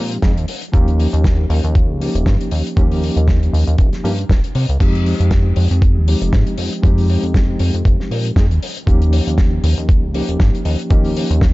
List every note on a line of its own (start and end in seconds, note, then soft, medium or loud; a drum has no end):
0.00 0.18 A#2 loud
0.00 0.19 F3 medium
0.00 0.20 G#3 medium
0.00 0.20 C4 medium
0.00 0.20 D#4 medium
0.00 0.20 G4 loud
0.12 closed hi-hat medium
0.22 0.38 F2 medium
0.22 0.30 F3 medium
0.22 0.30 G#3 medium
0.22 0.30 C4 medium
0.22 0.30 D#4 medium
0.22 0.30 G#4 medium
0.22 kick loud
0.22 snare loud
0.22 closed hi-hat medium
0.37 0.46 D#2 loud
0.37 closed hi-hat soft
0.48 open hi-hat loud
0.62 closed hi-hat medium
0.72 1.07 D#2 loud
0.72 1.97 F3 loud
0.72 1.98 A#3 medium
0.72 1.98 C#4 medium
0.72 1.98 D#4 medium
0.72 1.98 G4 loud
0.72 kick loud
0.72 closed hi-hat medium
0.88 closed hi-hat soft
1.00 open hi-hat medium
1.13 1.46 D#2 medium
1.13 closed hi-hat medium
1.24 kick loud
1.24 snare loud
1.24 closed hi-hat medium
1.50 1.61 D#2 medium
1.50 open hi-hat loud
1.64 1.91 D#2 medium
1.64 closed hi-hat medium
1.75 kick loud
1.75 closed hi-hat medium
1.89 2.09 C#2 medium
2.00 2.74 F3 medium
2.00 2.74 A#3 medium
2.00 2.74 C#4 medium
2.00 2.75 D#4 medium
2.00 2.75 G4 medium
2.00 open hi-hat medium
2.15 2.24 D#1 medium
2.15 closed hi-hat medium
2.26 2.37 G2 medium
2.26 kick loud
2.26 snare loud
2.26 closed hi-hat medium
2.41 closed hi-hat medium
2.51 2.63 D#2 medium
2.51 open hi-hat loud
2.67 closed hi-hat medium
2.76 3.11 D#2 loud
2.76 4.01 F3 medium
2.76 4.02 A#3 medium
2.76 4.02 C#4 medium
2.76 4.02 D#4 medium
2.76 4.02 G4 loud
2.76 kick loud
2.76 closed hi-hat medium
2.92 open hi-hat medium
3.04 open hi-hat medium
3.16 3.49 D#2 medium
3.16 closed hi-hat medium
3.28 kick loud
3.28 snare loud
3.28 closed hi-hat medium
3.43 closed hi-hat soft
3.53 3.65 D#2 medium
3.53 open hi-hat loud
3.67 3.76 D#2 medium
3.67 closed hi-hat medium
3.78 3.90 D#1 loud
3.78 kick loud
3.78 closed hi-hat medium
3.93 snare soft
3.93 closed hi-hat soft
4.04 4.25 G2 medium
4.04 4.12 F3 medium
4.04 4.12 A#3 medium
4.04 4.12 C#4 medium
4.04 4.12 D#4 medium
4.04 4.12 G4 loud
4.04 open hi-hat loud
4.19 closed hi-hat medium
4.29 4.41 D#1 medium
4.29 kick loud
4.29 snare loud
4.29 closed hi-hat medium
4.44 closed hi-hat medium
4.55 4.66 C3 medium
4.55 open hi-hat loud
4.69 4.78 C#2 medium
4.69 closed hi-hat medium
4.79 5.14 F2 loud
4.79 6.04 F3 medium
4.79 6.05 G#3 medium
4.79 6.05 C4 medium
4.79 6.05 D#4 medium
4.79 6.05 G4 loud
4.79 kick loud
4.79 closed hi-hat medium
4.79 crash medium
4.95 closed hi-hat soft
5.06 open hi-hat medium
5.20 5.53 F2 medium
5.20 closed hi-hat medium
5.31 kick loud
5.31 snare loud
5.31 closed hi-hat medium
5.56 5.68 F2 medium
5.56 open hi-hat loud
5.71 5.98 F2 medium
5.71 closed hi-hat medium
5.82 kick loud
5.82 closed hi-hat medium
5.96 6.16 D#2 loud
6.07 6.81 F3 medium
6.07 6.81 G#3 medium
6.07 6.81 C4 medium
6.07 6.81 D#4 medium
6.07 6.82 G4 medium
6.07 open hi-hat loud
6.22 6.31 F1 medium
6.22 closed hi-hat medium
6.33 6.44 G#2 medium
6.33 kick loud
6.33 snare loud
6.33 closed hi-hat medium
6.47 closed hi-hat medium
6.58 6.70 F2 medium
6.58 open hi-hat loud
6.73 closed hi-hat medium
6.83 7.18 F2 loud
6.83 8.33 F3 medium
6.83 8.33 G#3 medium
6.83 8.34 C4 medium
6.83 8.34 D#4 medium
6.83 8.34 G4 loud
6.83 kick loud
6.83 closed hi-hat medium
6.98 open hi-hat medium
7.10 open hi-hat loud
7.23 7.56 F2 medium
7.23 closed hi-hat medium
7.34 kick loud
7.34 snare loud
7.34 closed hi-hat medium
7.59 7.71 F2 medium
7.59 open hi-hat loud
7.74 7.83 F2 medium
7.74 closed hi-hat medium
7.85 7.97 F1 loud
7.85 kick loud
7.85 closed hi-hat medium
8.00 snare soft
8.11 8.32 A#2 loud
8.11 open hi-hat loud
8.25 closed hi-hat medium
8.36 8.52 F2 medium
8.36 8.43 F3 medium
8.36 8.44 G#3 medium
8.36 8.44 C4 medium
8.36 8.44 D#4 medium
8.36 8.44 G#4 medium
8.36 kick loud
8.36 snare loud
8.36 closed hi-hat medium
8.50 8.59 D#2 loud
8.50 closed hi-hat medium
8.63 open hi-hat loud
8.76 closed hi-hat medium
8.86 9.21 D#2 loud
8.86 10.11 F3 medium
8.86 10.11 A#3 medium
8.86 10.12 C#4 medium
8.86 10.12 D#4 medium
8.86 10.12 G4 loud
8.86 kick loud
8.86 closed hi-hat medium
9.02 closed hi-hat medium
9.13 open hi-hat loud
9.27 9.60 D#2 medium
9.27 closed hi-hat medium
9.38 kick loud
9.38 snare loud
9.38 closed hi-hat medium
9.63 9.75 D#2 medium
9.63 open hi-hat loud
9.77 10.04 D#2 medium
9.77 closed hi-hat medium
9.89 kick loud
9.89 closed hi-hat medium
10.03 10.23 C#2 loud
10.13 10.87 F3 medium
10.13 10.88 A#3 medium
10.13 10.88 C#4 medium
10.13 10.88 D#4 medium
10.13 10.88 G4 medium
10.13 open hi-hat loud
10.29 10.37 D#1 medium
10.29 closed hi-hat medium
10.40 10.51 G2 medium
10.40 kick loud
10.40 snare loud
10.40 closed hi-hat medium
10.55 closed hi-hat medium
10.65 10.76 D#2 medium
10.65 open hi-hat loud
10.79 closed hi-hat medium
10.90 11.24 D#2 loud
10.90 11.54 F3 medium
10.90 11.54 A#3 medium
10.90 11.54 C#4 medium
10.90 11.54 D#4 medium
10.90 11.54 G4 loud
10.90 kick loud
10.90 closed hi-hat medium
11.04 open hi-hat medium
11.17 open hi-hat loud
11.30 11.54 D#2 medium
11.30 closed hi-hat medium
11.41 kick loud
11.41 snare loud
11.41 closed hi-hat medium